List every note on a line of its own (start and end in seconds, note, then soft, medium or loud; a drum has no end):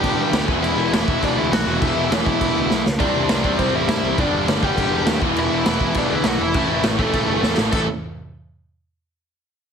0.00 0.15 G1 loud
0.00 0.49 G2 medium
0.00 0.46 D3 medium
0.00 0.48 G3 medium
0.00 0.49 B3 loud
0.00 0.47 D4 medium
0.00 0.45 G4 medium
0.00 0.44 G5 loud
0.00 kick loud
0.00 crash medium
0.17 0.28 E1 loud
0.32 0.50 D2 loud
0.32 snare loud
0.32 crash medium
0.47 0.59 E1 loud
0.47 0.93 E2 medium
0.47 0.92 B2 loud
0.47 0.91 E3 loud
0.47 0.92 G#3 loud
0.47 0.93 B3 loud
0.47 0.93 E4 loud
0.47 kick loud
0.61 0.73 E1 loud
0.61 0.91 E4 medium
0.61 0.91 E5 loud
0.61 crash medium
0.76 0.88 E1 medium
0.90 1.02 E1 loud
0.90 1.66 E2 medium
0.90 1.67 B2 medium
0.90 1.65 E3 medium
0.90 1.65 G#3 medium
0.90 1.66 B3 medium
0.90 1.68 E4 medium
0.90 1.21 E4 medium
0.90 1.21 E5 loud
0.90 snare loud
0.90 crash medium
0.95 1.69 E3 medium
1.08 1.19 E1 medium
1.08 kick loud
1.23 1.34 E1 loud
1.23 1.37 D4 medium
1.23 1.37 D5 medium
1.23 kick loud
1.23 crash medium
1.35 1.47 D2 loud
1.35 1.52 E5 loud
1.40 1.52 E4 medium
1.51 1.62 B1 loud
1.51 1.79 F#4 medium
1.51 1.81 F#5 medium
1.51 snare loud
1.51 crash medium
1.65 1.77 E1 loud
1.65 2.11 E2 loud
1.65 2.11 B2 loud
1.65 2.10 E3 loud
1.65 2.10 G#3 loud
1.65 2.11 B3 loud
1.65 2.13 E4 loud
1.70 2.13 E3 loud
1.81 1.93 E1 loud
1.81 2.09 E4 medium
1.81 2.09 E5 loud
1.81 kick loud
1.81 crash medium
1.96 2.07 E1 loud
2.10 2.22 E1 medium
2.10 2.85 E2 medium
2.10 2.85 B2 medium
2.10 2.84 E3 medium
2.10 2.85 G#3 medium
2.10 2.85 B3 medium
2.10 2.85 E4 medium
2.10 snare loud
2.10 crash medium
2.14 2.86 E3 medium
2.25 2.37 E1 medium
2.25 2.81 E4 medium
2.25 2.81 E5 loud
2.25 kick loud
2.41 2.52 E1 medium
2.41 kick loud
2.41 crash medium
2.56 2.67 D2 medium
2.70 2.82 B1 loud
2.70 snare medium
2.86 2.97 C#2 loud
2.86 snare loud
2.99 3.11 C2 loud
2.99 3.43 C3 loud
2.99 3.44 G3 medium
2.99 3.43 C4 loud
2.99 3.55 D4 medium
2.99 3.41 E4 loud
2.99 3.58 D5 medium
2.99 kick loud
2.99 crash medium
3.16 3.26 C2 medium
3.29 3.41 C2 loud
3.29 snare loud
3.29 crash medium
3.43 3.55 C2 medium
3.43 4.18 C3 medium
3.43 4.18 G3 medium
3.43 4.17 C4 medium
3.43 4.17 E4 medium
3.43 kick loud
3.58 3.70 C2 loud
3.58 3.73 C4 medium
3.58 3.74 C5 loud
3.58 kick loud
3.58 crash medium
3.74 3.85 A1 loud
3.74 3.88 E4 medium
3.74 3.88 E5 loud
3.88 3.99 G2 loud
3.88 4.17 E4 medium
3.88 4.16 E5 loud
3.88 snare loud
3.88 crash medium
4.03 4.14 C2 loud
4.17 4.29 G1 loud
4.17 4.61 G2 loud
4.17 4.62 D3 loud
4.17 4.62 G3 loud
4.17 4.61 B3 loud
4.17 4.46 D4 medium
4.17 4.60 D4 loud
4.17 4.47 D5 medium
4.17 kick loud
4.17 crash medium
4.32 4.44 G1 medium
4.47 4.58 G1 loud
4.47 snare loud
4.47 crash medium
4.62 4.73 G1 medium
4.62 5.22 G2 medium
4.62 5.20 D3 medium
4.62 5.21 G3 medium
4.62 5.21 B3 loud
4.62 5.20 D4 medium
4.62 5.18 G4 medium
4.62 5.19 G5 loud
4.62 kick loud
4.77 4.88 G1 loud
4.77 kick loud
4.77 crash medium
4.92 5.03 E1 loud
5.06 5.17 D#2 loud
5.06 snare loud
5.06 crash medium
5.21 5.32 E1 loud
5.21 5.65 E2 medium
5.21 5.66 B2 loud
5.21 5.64 E3 loud
5.21 5.65 G#3 loud
5.21 5.66 B3 loud
5.21 5.68 E4 loud
5.21 kick loud
5.36 5.47 E1 loud
5.36 5.93 E4 medium
5.36 crash medium
5.40 5.94 E5 loud
5.51 5.62 E1 medium
5.65 5.76 E1 loud
5.65 6.39 E2 medium
5.65 6.40 B2 medium
5.65 6.54 E3 medium
5.65 6.39 G#3 medium
5.65 6.40 B3 medium
5.65 6.57 E4 loud
5.65 snare loud
5.65 crash medium
5.80 5.91 E1 medium
5.80 kick loud
5.94 6.07 E1 loud
5.94 6.11 D4 medium
5.94 kick loud
5.94 crash medium
5.99 6.15 D5 loud
6.10 6.21 D2 loud
6.10 6.26 E4 medium
6.15 6.28 E5 loud
6.24 6.36 B1 loud
6.24 6.40 F#4 medium
6.24 snare loud
6.24 crash medium
6.28 6.42 F#5 loud
6.40 6.54 E1 loud
6.40 6.82 E4 medium
6.40 6.83 E5 medium
6.54 6.65 A1 loud
6.54 6.98 A2 medium
6.54 6.98 E3 loud
6.54 6.98 A3 loud
6.54 6.98 C#4 loud
6.54 6.97 E4 loud
6.54 kick loud
6.54 crash medium
6.68 6.79 A1 medium
6.83 6.95 A1 loud
6.83 snare loud
6.83 crash medium
6.98 7.10 A1 medium
6.98 7.73 A2 medium
6.98 7.72 E3 medium
6.98 7.54 A3 medium
6.98 7.71 A3 medium
6.98 7.72 C#4 medium
6.98 7.72 E4 medium
6.98 7.55 A4 medium
6.98 kick loud
7.13 7.25 A1 loud
7.13 kick loud
7.13 crash medium
7.28 7.39 G1 loud
7.43 7.54 E2 loud
7.43 snare medium
7.57 7.69 A1 loud
7.57 snare loud
7.72 7.86 A1 medium
7.72 7.85 A2 loud
7.72 7.85 E3 loud
7.72 7.84 A3 medium
7.72 7.85 C#4 loud
7.72 7.85 E4 loud
7.72 7.86 A4 medium
7.72 7.85 A4 loud
7.72 kick loud
7.72 crash medium